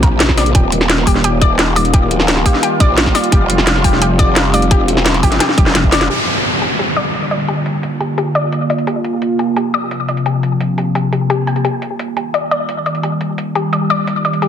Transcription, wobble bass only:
0.00 0.53 A#1 loud
0.55 1.06 D#1 loud
1.07 2.04 D#1 loud
2.04 2.31 D1 loud
2.31 2.44 C#1 loud
2.80 3.14 A#1 loud
3.32 3.83 F1 loud
3.84 4.81 F1 loud
4.81 5.08 E1 loud
5.08 5.22 D#1 loud
5.23 5.39 G1 loud
5.58 6.08 F1 loud

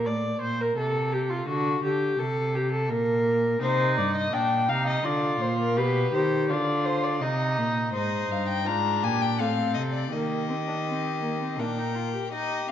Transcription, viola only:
0.06 0.41 D5 medium
0.41 0.62 C5 medium
0.60 0.77 A#4 medium
0.77 1.14 A4 medium
1.12 1.31 G4 medium
1.30 1.47 F4 medium
1.48 1.83 F#4 medium
1.83 2.20 G4 medium
2.19 2.56 A4 medium
2.55 2.71 G4 medium
2.72 2.91 A4 medium
2.90 3.61 A#4 medium
3.62 4.32 D#4 medium
4.33 4.68 D4 medium
4.69 5.05 D#4 medium
5.04 5.78 F4 medium
5.77 6.12 G4 medium
6.13 6.51 G4 medium
6.49 7.23 F4 medium
7.21 7.94 D#4 medium
7.94 8.69 D#4 medium
8.68 9.42 D4 medium
9.40 10.12 C4 medium
10.12 10.48 A#3 medium
10.49 10.56 C4 soft
10.67 10.75 D4 medium
10.86 11.22 C4 medium
11.22 11.29 A#3 medium
11.41 11.61 C4 medium
11.59 11.79 D4 medium
11.77 11.96 D#4 medium
11.95 12.13 F4 medium
12.14 12.32 G4 medium
12.32 12.66 D#4 medium

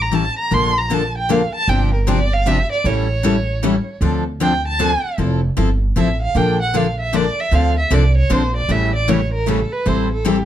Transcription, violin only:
0.01 0.16 A#5 medium
0.15 0.38 A5 medium
0.39 0.56 A#5 loud
0.54 0.79 C6 loud
0.78 0.95 A#5 loud
0.93 1.16 A5 medium
1.18 1.33 G5 medium
1.31 1.55 F5 medium
1.55 1.71 A5 loud
1.69 1.93 G5 loud
1.94 2.10 A#4 medium
2.08 2.35 D5 loud
2.34 2.49 F5 loud
2.47 2.71 E5 loud
2.72 2.88 D5 loud
2.87 4.02 C#5 medium
4.43 4.64 G5 loud
4.68 5.09 A5 loud
5.98 6.20 E5 medium
6.22 6.38 F5 medium
6.37 6.61 G5 medium
6.62 6.78 F#5 medium
6.76 7.00 F5 medium
7.00 7.17 E5 medium
7.16 7.42 D5 medium
7.40 7.56 E5 loud
7.55 7.78 F5 loud
7.79 7.96 E5 medium
7.94 8.17 D5 medium
8.18 8.33 C#5 medium
8.32 8.56 C5 medium
8.57 8.73 D5 medium
8.72 8.95 E5 medium
8.95 9.11 D5 medium
9.09 9.33 C#5 medium
9.34 9.50 A#4 medium
9.49 9.74 A4 medium
9.73 9.89 B4 medium
9.87 10.11 C5 medium
10.12 10.29 A4 medium
10.28 10.45 G4 medium

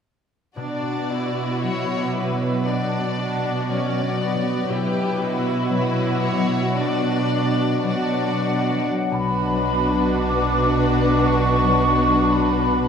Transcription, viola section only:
0.56 1.07 D4 soft
1.10 2.67 E4 soft
2.67 3.18 D4 soft
3.19 3.68 D4 soft
3.69 4.19 C#4 soft
4.20 4.70 B3 soft
4.70 6.75 E4 soft
6.76 7.85 D4 soft
7.86 8.88 D4 soft
9.12 12.88 D4 soft

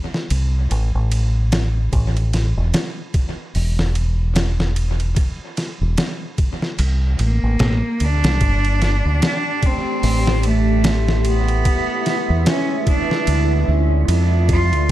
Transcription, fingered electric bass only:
0.31 0.67 C2 medium
0.71 0.92 A1 medium
0.95 1.89 A1 medium
1.93 2.52 A1 medium
2.57 2.72 E1 loud
3.55 5.14 E1 medium
5.81 5.96 E1 medium
6.79 7.16 C2 medium
7.19 7.40 A1 medium
7.43 7.59 A1 medium
7.60 7.81 A1 medium
8.01 8.22 D2 medium
8.24 8.39 C2 medium
8.41 9.01 G1 medium
9.05 9.20 D2 medium
10.04 11.62 A1 loud
12.30 12.45 E2 loud
13.28 13.64 D2 medium
13.68 14.05 D2 medium
14.08 14.73 F2 loud
14.73 14.88 D2 medium

